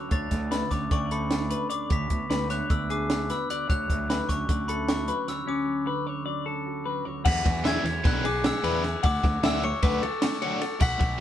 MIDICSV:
0, 0, Header, 1, 8, 480
1, 0, Start_track
1, 0, Tempo, 395778
1, 144, Time_signature, 9, 3, 24, 8
1, 13586, End_track
2, 0, Start_track
2, 0, Title_t, "Glockenspiel"
2, 0, Program_c, 0, 9
2, 147, Note_on_c, 0, 93, 102
2, 593, Note_off_c, 0, 93, 0
2, 857, Note_on_c, 0, 86, 84
2, 1110, Note_off_c, 0, 86, 0
2, 1117, Note_on_c, 0, 85, 95
2, 1357, Note_on_c, 0, 83, 78
2, 1359, Note_off_c, 0, 85, 0
2, 2081, Note_on_c, 0, 86, 84
2, 2096, Note_off_c, 0, 83, 0
2, 2299, Note_off_c, 0, 86, 0
2, 2333, Note_on_c, 0, 95, 98
2, 2770, Note_off_c, 0, 95, 0
2, 3040, Note_on_c, 0, 90, 101
2, 3147, Note_off_c, 0, 90, 0
2, 3284, Note_on_c, 0, 88, 91
2, 3526, Note_off_c, 0, 88, 0
2, 3532, Note_on_c, 0, 86, 86
2, 3971, Note_off_c, 0, 86, 0
2, 4019, Note_on_c, 0, 88, 67
2, 4248, Note_on_c, 0, 90, 83
2, 4254, Note_off_c, 0, 88, 0
2, 4465, Note_off_c, 0, 90, 0
2, 4491, Note_on_c, 0, 90, 102
2, 4931, Note_off_c, 0, 90, 0
2, 5200, Note_on_c, 0, 85, 89
2, 5678, Note_on_c, 0, 83, 89
2, 5693, Note_off_c, 0, 85, 0
2, 5786, Note_off_c, 0, 83, 0
2, 5933, Note_on_c, 0, 85, 79
2, 6411, Note_on_c, 0, 88, 85
2, 6421, Note_off_c, 0, 85, 0
2, 6652, Note_off_c, 0, 88, 0
2, 6653, Note_on_c, 0, 86, 82
2, 8278, Note_off_c, 0, 86, 0
2, 8821, Note_on_c, 0, 95, 101
2, 9256, Note_off_c, 0, 95, 0
2, 9306, Note_on_c, 0, 92, 106
2, 9738, Note_off_c, 0, 92, 0
2, 9786, Note_on_c, 0, 90, 86
2, 9887, Note_off_c, 0, 90, 0
2, 10014, Note_on_c, 0, 86, 82
2, 10251, Note_off_c, 0, 86, 0
2, 10260, Note_on_c, 0, 88, 90
2, 10693, Note_off_c, 0, 88, 0
2, 10984, Note_on_c, 0, 86, 94
2, 11460, Note_off_c, 0, 86, 0
2, 11473, Note_on_c, 0, 88, 92
2, 11697, Note_off_c, 0, 88, 0
2, 11697, Note_on_c, 0, 85, 82
2, 11929, Note_off_c, 0, 85, 0
2, 11933, Note_on_c, 0, 86, 80
2, 12828, Note_off_c, 0, 86, 0
2, 13123, Note_on_c, 0, 95, 114
2, 13586, Note_off_c, 0, 95, 0
2, 13586, End_track
3, 0, Start_track
3, 0, Title_t, "Clean electric guitar"
3, 0, Program_c, 1, 27
3, 0, Note_on_c, 1, 73, 71
3, 133, Note_off_c, 1, 73, 0
3, 148, Note_on_c, 1, 73, 80
3, 615, Note_off_c, 1, 73, 0
3, 620, Note_on_c, 1, 71, 84
3, 871, Note_off_c, 1, 71, 0
3, 871, Note_on_c, 1, 73, 77
3, 1107, Note_off_c, 1, 73, 0
3, 1112, Note_on_c, 1, 74, 69
3, 1350, Note_off_c, 1, 74, 0
3, 1353, Note_on_c, 1, 69, 68
3, 1825, Note_on_c, 1, 71, 73
3, 1832, Note_off_c, 1, 69, 0
3, 2053, Note_off_c, 1, 71, 0
3, 2058, Note_on_c, 1, 74, 77
3, 2306, Note_off_c, 1, 74, 0
3, 2306, Note_on_c, 1, 73, 80
3, 2783, Note_off_c, 1, 73, 0
3, 2788, Note_on_c, 1, 71, 77
3, 3029, Note_off_c, 1, 71, 0
3, 3034, Note_on_c, 1, 73, 86
3, 3272, Note_off_c, 1, 73, 0
3, 3272, Note_on_c, 1, 74, 75
3, 3513, Note_off_c, 1, 74, 0
3, 3519, Note_on_c, 1, 68, 77
3, 3997, Note_off_c, 1, 68, 0
3, 4003, Note_on_c, 1, 71, 75
3, 4239, Note_off_c, 1, 71, 0
3, 4251, Note_on_c, 1, 74, 80
3, 4476, Note_off_c, 1, 74, 0
3, 4481, Note_on_c, 1, 73, 86
3, 4959, Note_off_c, 1, 73, 0
3, 4969, Note_on_c, 1, 71, 82
3, 5210, Note_off_c, 1, 71, 0
3, 5210, Note_on_c, 1, 73, 79
3, 5444, Note_off_c, 1, 73, 0
3, 5444, Note_on_c, 1, 74, 70
3, 5681, Note_off_c, 1, 74, 0
3, 5693, Note_on_c, 1, 69, 77
3, 6164, Note_on_c, 1, 71, 82
3, 6166, Note_off_c, 1, 69, 0
3, 6403, Note_off_c, 1, 71, 0
3, 6403, Note_on_c, 1, 73, 66
3, 6639, Note_on_c, 1, 61, 92
3, 6641, Note_off_c, 1, 73, 0
3, 7119, Note_off_c, 1, 61, 0
3, 7119, Note_on_c, 1, 71, 78
3, 7358, Note_off_c, 1, 71, 0
3, 7358, Note_on_c, 1, 73, 84
3, 7583, Note_off_c, 1, 73, 0
3, 7587, Note_on_c, 1, 74, 82
3, 7833, Note_off_c, 1, 74, 0
3, 7833, Note_on_c, 1, 69, 69
3, 8314, Note_on_c, 1, 71, 77
3, 8316, Note_off_c, 1, 69, 0
3, 8553, Note_off_c, 1, 71, 0
3, 8553, Note_on_c, 1, 73, 75
3, 8786, Note_off_c, 1, 73, 0
3, 8791, Note_on_c, 1, 78, 95
3, 9273, Note_off_c, 1, 78, 0
3, 9278, Note_on_c, 1, 76, 84
3, 9517, Note_off_c, 1, 76, 0
3, 9517, Note_on_c, 1, 73, 90
3, 9758, Note_off_c, 1, 73, 0
3, 9758, Note_on_c, 1, 71, 95
3, 9996, Note_off_c, 1, 71, 0
3, 9998, Note_on_c, 1, 68, 83
3, 10475, Note_off_c, 1, 68, 0
3, 10478, Note_on_c, 1, 71, 82
3, 10722, Note_off_c, 1, 71, 0
3, 10722, Note_on_c, 1, 68, 79
3, 10946, Note_off_c, 1, 68, 0
3, 10951, Note_on_c, 1, 78, 91
3, 11430, Note_off_c, 1, 78, 0
3, 11443, Note_on_c, 1, 76, 89
3, 11676, Note_off_c, 1, 76, 0
3, 11688, Note_on_c, 1, 73, 94
3, 11915, Note_off_c, 1, 73, 0
3, 11920, Note_on_c, 1, 71, 90
3, 12153, Note_off_c, 1, 71, 0
3, 12162, Note_on_c, 1, 69, 91
3, 12633, Note_off_c, 1, 69, 0
3, 12635, Note_on_c, 1, 73, 85
3, 12869, Note_off_c, 1, 73, 0
3, 12874, Note_on_c, 1, 69, 82
3, 13109, Note_off_c, 1, 69, 0
3, 13118, Note_on_c, 1, 78, 100
3, 13584, Note_off_c, 1, 78, 0
3, 13586, End_track
4, 0, Start_track
4, 0, Title_t, "Overdriven electric guitar"
4, 0, Program_c, 2, 29
4, 9267, Note_on_c, 2, 52, 91
4, 9276, Note_on_c, 2, 59, 108
4, 9283, Note_on_c, 2, 62, 97
4, 9286, Note_on_c, 2, 68, 96
4, 9498, Note_off_c, 2, 68, 0
4, 9504, Note_off_c, 2, 62, 0
4, 9507, Note_off_c, 2, 59, 0
4, 9512, Note_off_c, 2, 52, 0
4, 9754, Note_on_c, 2, 52, 78
4, 9759, Note_on_c, 2, 59, 89
4, 9766, Note_on_c, 2, 62, 89
4, 9771, Note_on_c, 2, 68, 102
4, 9988, Note_off_c, 2, 68, 0
4, 9994, Note_off_c, 2, 52, 0
4, 9997, Note_off_c, 2, 59, 0
4, 10000, Note_off_c, 2, 62, 0
4, 10479, Note_on_c, 2, 68, 109
4, 10482, Note_on_c, 2, 62, 101
4, 10490, Note_on_c, 2, 52, 80
4, 10490, Note_on_c, 2, 59, 85
4, 10701, Note_off_c, 2, 52, 0
4, 10705, Note_off_c, 2, 59, 0
4, 10709, Note_off_c, 2, 68, 0
4, 10710, Note_off_c, 2, 62, 0
4, 11444, Note_on_c, 2, 54, 94
4, 11450, Note_on_c, 2, 57, 98
4, 11453, Note_on_c, 2, 62, 104
4, 11460, Note_on_c, 2, 66, 85
4, 11676, Note_off_c, 2, 54, 0
4, 11677, Note_off_c, 2, 66, 0
4, 11679, Note_off_c, 2, 57, 0
4, 11681, Note_off_c, 2, 62, 0
4, 11925, Note_on_c, 2, 54, 87
4, 11928, Note_on_c, 2, 57, 94
4, 11932, Note_on_c, 2, 62, 83
4, 11942, Note_on_c, 2, 66, 90
4, 12150, Note_off_c, 2, 66, 0
4, 12156, Note_off_c, 2, 54, 0
4, 12156, Note_off_c, 2, 62, 0
4, 12157, Note_off_c, 2, 57, 0
4, 12640, Note_on_c, 2, 66, 97
4, 12644, Note_on_c, 2, 62, 104
4, 12646, Note_on_c, 2, 57, 100
4, 12655, Note_on_c, 2, 54, 81
4, 12862, Note_off_c, 2, 54, 0
4, 12866, Note_off_c, 2, 57, 0
4, 12870, Note_off_c, 2, 62, 0
4, 12872, Note_off_c, 2, 66, 0
4, 13586, End_track
5, 0, Start_track
5, 0, Title_t, "Clean electric guitar"
5, 0, Program_c, 3, 27
5, 0, Note_on_c, 3, 38, 66
5, 0, Note_on_c, 3, 50, 67
5, 0, Note_on_c, 3, 54, 57
5, 0, Note_on_c, 3, 66, 51
5, 125, Note_off_c, 3, 38, 0
5, 130, Note_on_c, 3, 38, 68
5, 138, Note_off_c, 3, 66, 0
5, 143, Note_on_c, 3, 62, 65
5, 380, Note_off_c, 3, 54, 0
5, 385, Note_on_c, 3, 57, 55
5, 603, Note_off_c, 3, 50, 0
5, 607, Note_on_c, 3, 50, 64
5, 868, Note_on_c, 3, 61, 69
5, 1090, Note_off_c, 3, 57, 0
5, 1105, Note_on_c, 3, 57, 58
5, 1341, Note_off_c, 3, 61, 0
5, 1355, Note_on_c, 3, 61, 64
5, 1589, Note_off_c, 3, 62, 0
5, 1594, Note_on_c, 3, 62, 61
5, 1807, Note_off_c, 3, 57, 0
5, 1822, Note_on_c, 3, 57, 58
5, 2052, Note_off_c, 3, 38, 0
5, 2057, Note_on_c, 3, 38, 67
5, 2065, Note_off_c, 3, 62, 0
5, 2069, Note_on_c, 3, 62, 53
5, 2278, Note_off_c, 3, 57, 0
5, 2285, Note_off_c, 3, 61, 0
5, 2287, Note_off_c, 3, 38, 0
5, 2291, Note_on_c, 3, 38, 81
5, 2295, Note_off_c, 3, 62, 0
5, 2300, Note_on_c, 3, 66, 65
5, 2547, Note_on_c, 3, 59, 61
5, 2789, Note_off_c, 3, 50, 0
5, 2794, Note_on_c, 3, 56, 62
5, 3038, Note_on_c, 3, 62, 65
5, 3264, Note_off_c, 3, 59, 0
5, 3278, Note_on_c, 3, 59, 52
5, 3514, Note_off_c, 3, 62, 0
5, 3519, Note_on_c, 3, 62, 59
5, 3757, Note_off_c, 3, 66, 0
5, 3762, Note_on_c, 3, 66, 61
5, 3988, Note_off_c, 3, 59, 0
5, 4002, Note_on_c, 3, 59, 60
5, 4232, Note_off_c, 3, 38, 0
5, 4237, Note_off_c, 3, 66, 0
5, 4237, Note_on_c, 3, 38, 68
5, 4242, Note_on_c, 3, 66, 63
5, 4448, Note_off_c, 3, 56, 0
5, 4450, Note_off_c, 3, 59, 0
5, 4472, Note_off_c, 3, 38, 0
5, 4477, Note_on_c, 3, 38, 78
5, 4483, Note_off_c, 3, 66, 0
5, 4487, Note_on_c, 3, 66, 69
5, 4739, Note_on_c, 3, 54, 66
5, 4951, Note_on_c, 3, 50, 61
5, 5191, Note_off_c, 3, 62, 0
5, 5196, Note_on_c, 3, 61, 61
5, 5424, Note_off_c, 3, 54, 0
5, 5429, Note_on_c, 3, 54, 55
5, 5668, Note_off_c, 3, 61, 0
5, 5683, Note_on_c, 3, 61, 69
5, 5918, Note_off_c, 3, 66, 0
5, 5923, Note_on_c, 3, 66, 65
5, 6155, Note_off_c, 3, 54, 0
5, 6160, Note_on_c, 3, 54, 58
5, 6379, Note_off_c, 3, 38, 0
5, 6394, Note_on_c, 3, 38, 61
5, 6399, Note_off_c, 3, 66, 0
5, 6404, Note_on_c, 3, 66, 66
5, 6611, Note_off_c, 3, 38, 0
5, 6613, Note_off_c, 3, 61, 0
5, 6625, Note_off_c, 3, 66, 0
5, 6625, Note_on_c, 3, 38, 78
5, 6630, Note_on_c, 3, 66, 69
5, 6866, Note_off_c, 3, 54, 0
5, 6881, Note_on_c, 3, 54, 66
5, 7081, Note_off_c, 3, 50, 0
5, 7096, Note_on_c, 3, 50, 67
5, 7350, Note_on_c, 3, 61, 63
5, 7579, Note_off_c, 3, 54, 0
5, 7593, Note_on_c, 3, 54, 60
5, 7828, Note_off_c, 3, 61, 0
5, 7842, Note_on_c, 3, 61, 57
5, 8066, Note_off_c, 3, 66, 0
5, 8080, Note_on_c, 3, 66, 67
5, 8307, Note_off_c, 3, 54, 0
5, 8321, Note_on_c, 3, 54, 62
5, 8546, Note_off_c, 3, 38, 0
5, 8559, Note_off_c, 3, 66, 0
5, 8560, Note_on_c, 3, 38, 71
5, 8572, Note_on_c, 3, 66, 61
5, 8771, Note_off_c, 3, 61, 0
5, 8776, Note_off_c, 3, 66, 0
5, 8799, Note_off_c, 3, 38, 0
5, 10941, Note_off_c, 3, 50, 0
5, 10953, Note_off_c, 3, 54, 0
5, 13586, End_track
6, 0, Start_track
6, 0, Title_t, "Fingered electric bass"
6, 0, Program_c, 4, 33
6, 137, Note_on_c, 4, 38, 107
6, 323, Note_off_c, 4, 38, 0
6, 375, Note_on_c, 4, 38, 99
6, 746, Note_off_c, 4, 38, 0
6, 863, Note_on_c, 4, 38, 72
6, 1048, Note_off_c, 4, 38, 0
6, 1107, Note_on_c, 4, 38, 101
6, 1840, Note_off_c, 4, 38, 0
6, 2310, Note_on_c, 4, 38, 98
6, 2493, Note_off_c, 4, 38, 0
6, 2554, Note_on_c, 4, 38, 83
6, 2644, Note_off_c, 4, 38, 0
6, 2789, Note_on_c, 4, 38, 85
6, 3156, Note_off_c, 4, 38, 0
6, 3275, Note_on_c, 4, 38, 87
6, 4007, Note_off_c, 4, 38, 0
6, 4484, Note_on_c, 4, 38, 100
6, 4664, Note_off_c, 4, 38, 0
6, 4723, Note_on_c, 4, 38, 99
6, 5086, Note_off_c, 4, 38, 0
6, 5203, Note_on_c, 4, 38, 81
6, 5384, Note_off_c, 4, 38, 0
6, 5448, Note_on_c, 4, 38, 101
6, 6176, Note_off_c, 4, 38, 0
6, 8803, Note_on_c, 4, 40, 118
6, 8984, Note_off_c, 4, 40, 0
6, 9043, Note_on_c, 4, 40, 94
6, 9406, Note_off_c, 4, 40, 0
6, 9509, Note_on_c, 4, 40, 93
6, 9695, Note_off_c, 4, 40, 0
6, 9765, Note_on_c, 4, 35, 103
6, 10308, Note_off_c, 4, 35, 0
6, 10471, Note_on_c, 4, 40, 94
6, 10837, Note_off_c, 4, 40, 0
6, 10967, Note_on_c, 4, 38, 99
6, 11143, Note_off_c, 4, 38, 0
6, 11203, Note_on_c, 4, 38, 111
6, 11381, Note_off_c, 4, 38, 0
6, 11424, Note_on_c, 4, 38, 105
6, 11791, Note_off_c, 4, 38, 0
6, 11917, Note_on_c, 4, 38, 109
6, 12096, Note_off_c, 4, 38, 0
6, 13109, Note_on_c, 4, 35, 115
6, 13289, Note_off_c, 4, 35, 0
6, 13349, Note_on_c, 4, 35, 90
6, 13586, Note_off_c, 4, 35, 0
6, 13586, End_track
7, 0, Start_track
7, 0, Title_t, "Muted overdriven electric guitar strokes"
7, 8797, Note_on_c, 9, 29, 45
7, 8918, Note_off_c, 9, 29, 0
7, 9037, Note_on_c, 9, 29, 47
7, 9158, Note_off_c, 9, 29, 0
7, 9512, Note_on_c, 9, 29, 53
7, 9634, Note_off_c, 9, 29, 0
7, 10002, Note_on_c, 9, 29, 56
7, 10124, Note_off_c, 9, 29, 0
7, 10241, Note_on_c, 9, 29, 45
7, 10363, Note_off_c, 9, 29, 0
7, 10716, Note_on_c, 9, 29, 48
7, 10837, Note_off_c, 9, 29, 0
7, 10962, Note_on_c, 9, 29, 40
7, 11083, Note_off_c, 9, 29, 0
7, 11197, Note_on_c, 9, 29, 49
7, 11319, Note_off_c, 9, 29, 0
7, 11692, Note_on_c, 9, 29, 62
7, 11813, Note_off_c, 9, 29, 0
7, 12164, Note_on_c, 9, 29, 58
7, 12285, Note_off_c, 9, 29, 0
7, 12401, Note_on_c, 9, 29, 52
7, 12523, Note_off_c, 9, 29, 0
7, 12877, Note_on_c, 9, 29, 54
7, 12998, Note_off_c, 9, 29, 0
7, 13101, Note_on_c, 9, 29, 48
7, 13223, Note_off_c, 9, 29, 0
7, 13338, Note_on_c, 9, 29, 45
7, 13459, Note_off_c, 9, 29, 0
7, 13586, End_track
8, 0, Start_track
8, 0, Title_t, "Drums"
8, 133, Note_on_c, 9, 42, 73
8, 139, Note_on_c, 9, 36, 95
8, 254, Note_off_c, 9, 42, 0
8, 260, Note_off_c, 9, 36, 0
8, 377, Note_on_c, 9, 38, 35
8, 377, Note_on_c, 9, 42, 62
8, 382, Note_on_c, 9, 36, 81
8, 498, Note_off_c, 9, 38, 0
8, 498, Note_off_c, 9, 42, 0
8, 504, Note_off_c, 9, 36, 0
8, 626, Note_on_c, 9, 38, 83
8, 626, Note_on_c, 9, 42, 83
8, 748, Note_off_c, 9, 38, 0
8, 748, Note_off_c, 9, 42, 0
8, 864, Note_on_c, 9, 36, 60
8, 864, Note_on_c, 9, 38, 31
8, 864, Note_on_c, 9, 42, 55
8, 985, Note_off_c, 9, 38, 0
8, 985, Note_off_c, 9, 42, 0
8, 986, Note_off_c, 9, 36, 0
8, 1105, Note_on_c, 9, 36, 102
8, 1105, Note_on_c, 9, 42, 85
8, 1227, Note_off_c, 9, 36, 0
8, 1227, Note_off_c, 9, 42, 0
8, 1348, Note_on_c, 9, 42, 59
8, 1469, Note_off_c, 9, 42, 0
8, 1584, Note_on_c, 9, 38, 116
8, 1584, Note_on_c, 9, 42, 87
8, 1705, Note_off_c, 9, 38, 0
8, 1705, Note_off_c, 9, 42, 0
8, 1826, Note_on_c, 9, 42, 64
8, 1947, Note_off_c, 9, 42, 0
8, 2065, Note_on_c, 9, 42, 59
8, 2186, Note_off_c, 9, 42, 0
8, 2307, Note_on_c, 9, 42, 78
8, 2313, Note_on_c, 9, 36, 98
8, 2428, Note_off_c, 9, 42, 0
8, 2434, Note_off_c, 9, 36, 0
8, 2549, Note_on_c, 9, 42, 64
8, 2553, Note_on_c, 9, 36, 71
8, 2670, Note_off_c, 9, 42, 0
8, 2675, Note_off_c, 9, 36, 0
8, 2796, Note_on_c, 9, 38, 96
8, 2796, Note_on_c, 9, 42, 73
8, 2918, Note_off_c, 9, 38, 0
8, 2918, Note_off_c, 9, 42, 0
8, 3032, Note_on_c, 9, 38, 28
8, 3032, Note_on_c, 9, 42, 55
8, 3153, Note_off_c, 9, 38, 0
8, 3153, Note_off_c, 9, 42, 0
8, 3274, Note_on_c, 9, 42, 75
8, 3277, Note_on_c, 9, 36, 100
8, 3395, Note_off_c, 9, 42, 0
8, 3398, Note_off_c, 9, 36, 0
8, 3519, Note_on_c, 9, 42, 55
8, 3641, Note_off_c, 9, 42, 0
8, 3757, Note_on_c, 9, 38, 116
8, 3757, Note_on_c, 9, 42, 85
8, 3878, Note_off_c, 9, 38, 0
8, 3878, Note_off_c, 9, 42, 0
8, 3998, Note_on_c, 9, 38, 32
8, 3998, Note_on_c, 9, 42, 60
8, 4119, Note_off_c, 9, 38, 0
8, 4119, Note_off_c, 9, 42, 0
8, 4247, Note_on_c, 9, 42, 60
8, 4368, Note_off_c, 9, 42, 0
8, 4484, Note_on_c, 9, 36, 108
8, 4484, Note_on_c, 9, 42, 82
8, 4605, Note_off_c, 9, 36, 0
8, 4606, Note_off_c, 9, 42, 0
8, 4726, Note_on_c, 9, 36, 74
8, 4731, Note_on_c, 9, 42, 62
8, 4848, Note_off_c, 9, 36, 0
8, 4853, Note_off_c, 9, 42, 0
8, 4972, Note_on_c, 9, 38, 93
8, 4972, Note_on_c, 9, 42, 80
8, 5093, Note_off_c, 9, 38, 0
8, 5093, Note_off_c, 9, 42, 0
8, 5206, Note_on_c, 9, 36, 63
8, 5209, Note_on_c, 9, 38, 30
8, 5209, Note_on_c, 9, 42, 65
8, 5327, Note_off_c, 9, 36, 0
8, 5330, Note_off_c, 9, 38, 0
8, 5330, Note_off_c, 9, 42, 0
8, 5445, Note_on_c, 9, 36, 101
8, 5445, Note_on_c, 9, 42, 93
8, 5566, Note_off_c, 9, 42, 0
8, 5567, Note_off_c, 9, 36, 0
8, 5685, Note_on_c, 9, 42, 57
8, 5806, Note_off_c, 9, 42, 0
8, 5925, Note_on_c, 9, 38, 115
8, 5925, Note_on_c, 9, 42, 92
8, 6046, Note_off_c, 9, 38, 0
8, 6046, Note_off_c, 9, 42, 0
8, 6159, Note_on_c, 9, 42, 57
8, 6281, Note_off_c, 9, 42, 0
8, 6406, Note_on_c, 9, 38, 35
8, 6406, Note_on_c, 9, 42, 54
8, 6527, Note_off_c, 9, 38, 0
8, 6527, Note_off_c, 9, 42, 0
8, 8798, Note_on_c, 9, 49, 127
8, 8801, Note_on_c, 9, 36, 114
8, 8919, Note_off_c, 9, 49, 0
8, 8923, Note_off_c, 9, 36, 0
8, 9045, Note_on_c, 9, 36, 96
8, 9047, Note_on_c, 9, 51, 94
8, 9166, Note_off_c, 9, 36, 0
8, 9168, Note_off_c, 9, 51, 0
8, 9279, Note_on_c, 9, 38, 106
8, 9279, Note_on_c, 9, 51, 93
8, 9400, Note_off_c, 9, 38, 0
8, 9400, Note_off_c, 9, 51, 0
8, 9527, Note_on_c, 9, 38, 32
8, 9527, Note_on_c, 9, 51, 78
8, 9648, Note_off_c, 9, 38, 0
8, 9648, Note_off_c, 9, 51, 0
8, 9765, Note_on_c, 9, 36, 127
8, 9765, Note_on_c, 9, 51, 114
8, 9886, Note_off_c, 9, 36, 0
8, 9886, Note_off_c, 9, 51, 0
8, 10004, Note_on_c, 9, 51, 73
8, 10125, Note_off_c, 9, 51, 0
8, 10239, Note_on_c, 9, 38, 122
8, 10239, Note_on_c, 9, 51, 115
8, 10361, Note_off_c, 9, 38, 0
8, 10361, Note_off_c, 9, 51, 0
8, 10480, Note_on_c, 9, 51, 82
8, 10602, Note_off_c, 9, 51, 0
8, 10724, Note_on_c, 9, 38, 33
8, 10724, Note_on_c, 9, 51, 71
8, 10845, Note_off_c, 9, 38, 0
8, 10845, Note_off_c, 9, 51, 0
8, 10956, Note_on_c, 9, 51, 106
8, 10964, Note_on_c, 9, 36, 112
8, 11077, Note_off_c, 9, 51, 0
8, 11085, Note_off_c, 9, 36, 0
8, 11204, Note_on_c, 9, 36, 98
8, 11204, Note_on_c, 9, 38, 40
8, 11204, Note_on_c, 9, 51, 80
8, 11325, Note_off_c, 9, 38, 0
8, 11325, Note_off_c, 9, 51, 0
8, 11326, Note_off_c, 9, 36, 0
8, 11443, Note_on_c, 9, 38, 120
8, 11443, Note_on_c, 9, 51, 94
8, 11564, Note_off_c, 9, 38, 0
8, 11564, Note_off_c, 9, 51, 0
8, 11682, Note_on_c, 9, 51, 69
8, 11804, Note_off_c, 9, 51, 0
8, 11917, Note_on_c, 9, 38, 37
8, 11917, Note_on_c, 9, 51, 107
8, 11922, Note_on_c, 9, 36, 112
8, 12038, Note_off_c, 9, 38, 0
8, 12038, Note_off_c, 9, 51, 0
8, 12043, Note_off_c, 9, 36, 0
8, 12162, Note_on_c, 9, 51, 86
8, 12283, Note_off_c, 9, 51, 0
8, 12393, Note_on_c, 9, 38, 127
8, 12393, Note_on_c, 9, 51, 118
8, 12514, Note_off_c, 9, 38, 0
8, 12514, Note_off_c, 9, 51, 0
8, 12636, Note_on_c, 9, 51, 88
8, 12757, Note_off_c, 9, 51, 0
8, 12874, Note_on_c, 9, 38, 32
8, 12874, Note_on_c, 9, 51, 74
8, 12995, Note_off_c, 9, 38, 0
8, 12995, Note_off_c, 9, 51, 0
8, 13103, Note_on_c, 9, 57, 102
8, 13110, Note_on_c, 9, 36, 111
8, 13225, Note_off_c, 9, 57, 0
8, 13231, Note_off_c, 9, 36, 0
8, 13347, Note_on_c, 9, 51, 91
8, 13349, Note_on_c, 9, 36, 96
8, 13468, Note_off_c, 9, 51, 0
8, 13471, Note_off_c, 9, 36, 0
8, 13586, End_track
0, 0, End_of_file